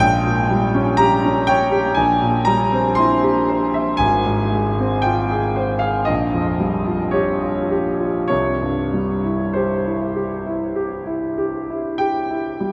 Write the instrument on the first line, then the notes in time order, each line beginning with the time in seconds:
grand piano
Already playing: A#1
0.00 G5
0.26 A#2
0.51 G3
0.75 C#4
0.97 G4 A#5
1.25 C#4
1.47 C#5 G5
1.72 G4
1.95 A#1 G#5
2.22 A#2
2.45 G3 A#5
2.72 C4
2.95 E4 C6
3.23 G4
3.49 C5
3.74 E5
3.97 G#1 G#5
4.26 G#2
4.52 G#3
4.79 C4
5.02 F4 G5
5.31 G#4
5.56 C5
5.79 G#4 F5
6.05 A#1 D#5
6.34 F2
6.60 G3
6.86 F4
7.11 G4 C#5
7.42 F4
7.71 G4
7.99 F4
8.28 C2 C#5
8.62 G2
8.93 G3
9.24 E4
9.53 G4 C5
9.86 E4
10.16 G4
10.46 E4
10.75 G4
11.06 E4
11.38 G4
11.70 E4
11.98 G4 G5
12.30 E4
12.60 G3